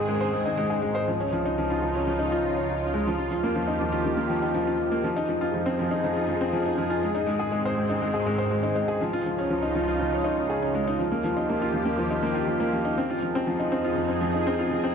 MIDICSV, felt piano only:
0, 0, Header, 1, 2, 480
1, 0, Start_track
1, 0, Tempo, 495868
1, 1043, Time_signature, 4, 2, 24, 8
1, 14470, End_track
2, 0, Start_track
2, 0, Title_t, "Felt piano"
2, 0, Program_c, 0, 0
2, 0, Control_c, 0, 64, 127
2, 0, Note_on_c, 0, 56, 73
2, 0, Note_on_c, 0, 63, 78
2, 0, Note_on_c, 0, 68, 75
2, 0, Note_on_c, 0, 72, 82
2, 82, Note_off_c, 0, 56, 0
2, 82, Note_on_c, 0, 56, 79
2, 150, Note_off_c, 0, 56, 0
2, 200, Note_off_c, 0, 72, 0
2, 200, Note_on_c, 0, 72, 74
2, 270, Note_off_c, 0, 72, 0
2, 321, Note_on_c, 0, 56, 65
2, 436, Note_off_c, 0, 56, 0
2, 440, Note_off_c, 0, 63, 0
2, 440, Note_on_c, 0, 63, 72
2, 555, Note_off_c, 0, 63, 0
2, 555, Note_on_c, 0, 56, 89
2, 673, Note_off_c, 0, 56, 0
2, 677, Note_off_c, 0, 68, 0
2, 677, Note_on_c, 0, 68, 77
2, 791, Note_on_c, 0, 56, 72
2, 794, Note_off_c, 0, 68, 0
2, 865, Note_off_c, 0, 56, 0
2, 917, Note_on_c, 0, 72, 82
2, 988, Note_off_c, 0, 72, 0
2, 1043, Note_on_c, 0, 53, 64
2, 1054, Control_c, 0, 64, 0
2, 1157, Note_off_c, 0, 53, 0
2, 1161, Note_on_c, 0, 61, 76
2, 1210, Control_c, 0, 64, 127
2, 1276, Note_off_c, 0, 61, 0
2, 1283, Note_on_c, 0, 53, 75
2, 1397, Note_off_c, 0, 53, 0
2, 1409, Note_on_c, 0, 63, 79
2, 1520, Note_off_c, 0, 63, 0
2, 1532, Note_on_c, 0, 53, 83
2, 1596, Note_off_c, 0, 53, 0
2, 1647, Note_on_c, 0, 65, 82
2, 1713, Note_off_c, 0, 65, 0
2, 1764, Note_on_c, 0, 53, 57
2, 1877, Note_off_c, 0, 53, 0
2, 1885, Note_on_c, 0, 61, 72
2, 1998, Note_off_c, 0, 61, 0
2, 2005, Note_on_c, 0, 53, 75
2, 2118, Note_off_c, 0, 53, 0
2, 2120, Note_on_c, 0, 63, 77
2, 2235, Note_off_c, 0, 63, 0
2, 2244, Note_on_c, 0, 65, 80
2, 2357, Note_off_c, 0, 65, 0
2, 2363, Note_on_c, 0, 61, 53
2, 2477, Note_off_c, 0, 61, 0
2, 2483, Note_on_c, 0, 73, 65
2, 2551, Note_off_c, 0, 73, 0
2, 2603, Note_on_c, 0, 65, 59
2, 2717, Note_off_c, 0, 65, 0
2, 2725, Note_on_c, 0, 61, 55
2, 2838, Note_off_c, 0, 61, 0
2, 2844, Note_on_c, 0, 56, 77
2, 2912, Note_off_c, 0, 56, 0
2, 2974, Control_c, 0, 64, 0
2, 2974, Note_on_c, 0, 53, 76
2, 3037, Note_off_c, 0, 53, 0
2, 3082, Note_on_c, 0, 65, 74
2, 3151, Note_off_c, 0, 65, 0
2, 3161, Control_c, 0, 64, 127
2, 3201, Note_on_c, 0, 53, 57
2, 3316, Note_off_c, 0, 53, 0
2, 3326, Note_on_c, 0, 58, 76
2, 3438, Note_off_c, 0, 58, 0
2, 3440, Note_on_c, 0, 53, 78
2, 3555, Note_off_c, 0, 53, 0
2, 3558, Note_on_c, 0, 63, 81
2, 3674, Note_off_c, 0, 63, 0
2, 3677, Note_on_c, 0, 53, 80
2, 3748, Note_off_c, 0, 53, 0
2, 3797, Note_on_c, 0, 65, 82
2, 3868, Note_off_c, 0, 65, 0
2, 3919, Note_on_c, 0, 53, 61
2, 4035, Note_off_c, 0, 53, 0
2, 4035, Note_on_c, 0, 58, 73
2, 4153, Note_off_c, 0, 58, 0
2, 4158, Note_on_c, 0, 53, 82
2, 4274, Note_off_c, 0, 53, 0
2, 4280, Note_on_c, 0, 63, 79
2, 4395, Note_off_c, 0, 63, 0
2, 4397, Note_on_c, 0, 53, 87
2, 4468, Note_off_c, 0, 53, 0
2, 4521, Note_on_c, 0, 65, 82
2, 4590, Note_off_c, 0, 65, 0
2, 4639, Note_on_c, 0, 53, 53
2, 4755, Note_off_c, 0, 53, 0
2, 4759, Note_on_c, 0, 58, 80
2, 4875, Note_off_c, 0, 58, 0
2, 4877, Note_on_c, 0, 53, 82
2, 4894, Control_c, 0, 64, 0
2, 4994, Note_off_c, 0, 53, 0
2, 5000, Note_on_c, 0, 63, 84
2, 5060, Control_c, 0, 64, 127
2, 5115, Note_off_c, 0, 63, 0
2, 5119, Note_on_c, 0, 53, 77
2, 5189, Note_off_c, 0, 53, 0
2, 5237, Note_on_c, 0, 65, 77
2, 5308, Note_off_c, 0, 65, 0
2, 5362, Note_on_c, 0, 53, 66
2, 5476, Note_off_c, 0, 53, 0
2, 5477, Note_on_c, 0, 60, 80
2, 5594, Note_off_c, 0, 60, 0
2, 5605, Note_on_c, 0, 53, 80
2, 5718, Note_off_c, 0, 53, 0
2, 5723, Note_on_c, 0, 63, 85
2, 5837, Note_off_c, 0, 63, 0
2, 5847, Note_on_c, 0, 53, 80
2, 5913, Note_off_c, 0, 53, 0
2, 5965, Note_on_c, 0, 65, 76
2, 6032, Note_off_c, 0, 65, 0
2, 6084, Note_on_c, 0, 53, 66
2, 6197, Note_off_c, 0, 53, 0
2, 6204, Note_on_c, 0, 60, 80
2, 6317, Note_off_c, 0, 60, 0
2, 6321, Note_on_c, 0, 53, 86
2, 6436, Note_off_c, 0, 53, 0
2, 6443, Note_on_c, 0, 63, 78
2, 6557, Note_off_c, 0, 63, 0
2, 6559, Note_on_c, 0, 53, 81
2, 6629, Note_off_c, 0, 53, 0
2, 6678, Note_on_c, 0, 65, 84
2, 6749, Note_off_c, 0, 65, 0
2, 6802, Note_on_c, 0, 56, 64
2, 6816, Control_c, 0, 64, 0
2, 6916, Note_off_c, 0, 56, 0
2, 6919, Note_on_c, 0, 63, 79
2, 7003, Control_c, 0, 64, 127
2, 7035, Note_off_c, 0, 63, 0
2, 7035, Note_on_c, 0, 56, 72
2, 7153, Note_off_c, 0, 56, 0
2, 7157, Note_on_c, 0, 68, 80
2, 7274, Note_off_c, 0, 68, 0
2, 7278, Note_on_c, 0, 56, 79
2, 7349, Note_off_c, 0, 56, 0
2, 7409, Note_on_c, 0, 72, 82
2, 7474, Note_off_c, 0, 72, 0
2, 7524, Note_on_c, 0, 56, 61
2, 7637, Note_off_c, 0, 56, 0
2, 7643, Note_on_c, 0, 63, 78
2, 7757, Note_off_c, 0, 63, 0
2, 7760, Note_on_c, 0, 56, 81
2, 7875, Note_off_c, 0, 56, 0
2, 7877, Note_on_c, 0, 68, 74
2, 7994, Note_off_c, 0, 68, 0
2, 7999, Note_on_c, 0, 56, 85
2, 8069, Note_off_c, 0, 56, 0
2, 8115, Note_on_c, 0, 72, 74
2, 8187, Note_off_c, 0, 72, 0
2, 8235, Note_on_c, 0, 56, 69
2, 8353, Note_off_c, 0, 56, 0
2, 8355, Note_on_c, 0, 63, 79
2, 8473, Note_off_c, 0, 63, 0
2, 8473, Note_on_c, 0, 56, 78
2, 8592, Note_off_c, 0, 56, 0
2, 8597, Note_on_c, 0, 68, 83
2, 8714, Note_off_c, 0, 68, 0
2, 8722, Note_on_c, 0, 53, 79
2, 8734, Control_c, 0, 64, 0
2, 8791, Note_off_c, 0, 53, 0
2, 8840, Note_on_c, 0, 65, 77
2, 8881, Control_c, 0, 64, 127
2, 8910, Note_off_c, 0, 65, 0
2, 8964, Note_on_c, 0, 53, 56
2, 9077, Note_off_c, 0, 53, 0
2, 9081, Note_on_c, 0, 61, 79
2, 9196, Note_off_c, 0, 61, 0
2, 9200, Note_on_c, 0, 53, 79
2, 9315, Note_off_c, 0, 53, 0
2, 9317, Note_on_c, 0, 63, 78
2, 9434, Note_off_c, 0, 63, 0
2, 9441, Note_on_c, 0, 53, 79
2, 9510, Note_off_c, 0, 53, 0
2, 9562, Note_on_c, 0, 65, 79
2, 9631, Note_off_c, 0, 65, 0
2, 9679, Note_on_c, 0, 53, 69
2, 9795, Note_off_c, 0, 53, 0
2, 9800, Note_on_c, 0, 61, 72
2, 9914, Note_on_c, 0, 63, 84
2, 9915, Note_off_c, 0, 61, 0
2, 10032, Note_off_c, 0, 63, 0
2, 10041, Note_on_c, 0, 61, 57
2, 10156, Note_off_c, 0, 61, 0
2, 10159, Note_on_c, 0, 68, 71
2, 10275, Note_off_c, 0, 68, 0
2, 10283, Note_on_c, 0, 61, 75
2, 10351, Note_off_c, 0, 61, 0
2, 10404, Note_on_c, 0, 56, 75
2, 10517, Note_off_c, 0, 56, 0
2, 10526, Note_on_c, 0, 63, 82
2, 10593, Note_off_c, 0, 63, 0
2, 10639, Note_on_c, 0, 53, 67
2, 10652, Control_c, 0, 64, 0
2, 10755, Note_off_c, 0, 53, 0
2, 10760, Note_on_c, 0, 58, 80
2, 10842, Control_c, 0, 64, 127
2, 10875, Note_off_c, 0, 58, 0
2, 10881, Note_on_c, 0, 53, 76
2, 10996, Note_off_c, 0, 53, 0
2, 11002, Note_on_c, 0, 63, 78
2, 11116, Note_off_c, 0, 63, 0
2, 11126, Note_on_c, 0, 58, 79
2, 11238, Note_off_c, 0, 58, 0
2, 11246, Note_on_c, 0, 65, 80
2, 11313, Note_off_c, 0, 65, 0
2, 11362, Note_on_c, 0, 53, 64
2, 11474, Note_on_c, 0, 58, 82
2, 11476, Note_off_c, 0, 53, 0
2, 11592, Note_off_c, 0, 58, 0
2, 11594, Note_on_c, 0, 53, 83
2, 11712, Note_off_c, 0, 53, 0
2, 11719, Note_on_c, 0, 63, 76
2, 11835, Note_off_c, 0, 63, 0
2, 11835, Note_on_c, 0, 58, 86
2, 11953, Note_off_c, 0, 58, 0
2, 11954, Note_on_c, 0, 65, 78
2, 12027, Note_off_c, 0, 65, 0
2, 12074, Note_on_c, 0, 53, 69
2, 12192, Note_off_c, 0, 53, 0
2, 12197, Note_on_c, 0, 58, 82
2, 12314, Note_off_c, 0, 58, 0
2, 12320, Note_on_c, 0, 53, 76
2, 12435, Note_off_c, 0, 53, 0
2, 12438, Note_on_c, 0, 63, 87
2, 12554, Note_off_c, 0, 63, 0
2, 12561, Note_on_c, 0, 60, 83
2, 12576, Control_c, 0, 64, 0
2, 12676, Note_off_c, 0, 60, 0
2, 12680, Note_on_c, 0, 65, 75
2, 12725, Control_c, 0, 64, 127
2, 12749, Note_off_c, 0, 65, 0
2, 12798, Note_on_c, 0, 53, 60
2, 12914, Note_off_c, 0, 53, 0
2, 12925, Note_on_c, 0, 60, 81
2, 13038, Note_off_c, 0, 60, 0
2, 13040, Note_on_c, 0, 53, 82
2, 13155, Note_off_c, 0, 53, 0
2, 13161, Note_on_c, 0, 63, 85
2, 13276, Note_off_c, 0, 63, 0
2, 13279, Note_on_c, 0, 60, 84
2, 13395, Note_off_c, 0, 60, 0
2, 13402, Note_on_c, 0, 65, 78
2, 13471, Note_off_c, 0, 65, 0
2, 13511, Note_on_c, 0, 53, 65
2, 13631, Note_off_c, 0, 53, 0
2, 13635, Note_on_c, 0, 60, 75
2, 13753, Note_off_c, 0, 60, 0
2, 13757, Note_on_c, 0, 53, 86
2, 13874, Note_off_c, 0, 53, 0
2, 13882, Note_on_c, 0, 63, 76
2, 13996, Note_off_c, 0, 63, 0
2, 14005, Note_on_c, 0, 60, 89
2, 14118, Note_off_c, 0, 60, 0
2, 14124, Note_on_c, 0, 65, 84
2, 14191, Note_off_c, 0, 65, 0
2, 14240, Note_on_c, 0, 53, 60
2, 14355, Note_off_c, 0, 53, 0
2, 14361, Note_on_c, 0, 60, 85
2, 14470, Note_off_c, 0, 60, 0
2, 14470, End_track
0, 0, End_of_file